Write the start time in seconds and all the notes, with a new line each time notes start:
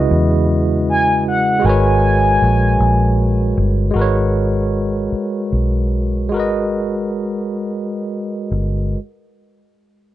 Already playing: C#3 G#3 E4 F#4 B4 D#5
0.11 E2
0.89 G#5
1.28 F#5
1.60 G#3 F#4
1.64 G#1 A#4 B4 G#5
1.69 C#5
2.42 A#1
2.80 A#1
3.57 G1
3.91 G#3 F#4
3.95 G#1 A#4 B4
4.01 C#5
5.12 muted fingered electric bass stroke
5.52 B1
6.29 G#1 G#3 F#4
6.34 A#4 B4
6.40 D#5
8.51 G1